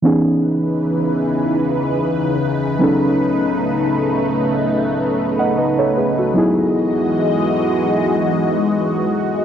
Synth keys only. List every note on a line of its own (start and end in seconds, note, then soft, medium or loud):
0.02 2.75 E3 medium
0.02 2.76 B3 medium
0.02 2.77 C#4 medium
0.02 2.77 D#4 medium
0.07 2.78 G#4 medium
2.79 5.91 F#3 medium
2.79 5.92 B3 medium
2.79 5.92 C#4 medium
2.79 5.93 D#4 medium
2.83 5.14 A4 medium
5.39 5.56 D#5 soft
5.39 5.56 F#5 medium
5.58 5.78 B4 medium
5.58 5.77 D#5 medium
5.79 5.96 A4 medium
5.79 5.95 C#5 medium
5.97 6.17 G#4 soft
5.97 6.17 B4 medium
6.18 6.56 F#4 soft
6.18 6.55 A4 medium
6.34 9.45 F#3 medium
6.34 9.45 B3 medium
6.34 9.45 D#4 medium
6.34 9.45 E4 medium
6.39 9.45 G#4 medium